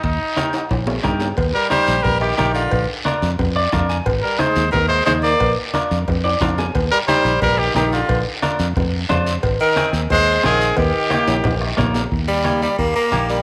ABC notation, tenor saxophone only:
X:1
M:4/4
L:1/8
Q:1/4=179
K:Eb
V:1 name="Tenor saxophone" clef=bass
z8 | z G, G,2 G, E, E, D,- | D, z6 z | z G, A,2 E, A, A, B,- |
B, z6 z | z G, G,2 G, E, E, D,- | D, z6 z | z E,2 z A,2 E,2 |
E,6 z2 | z G,2 G, B, B,2 G, |]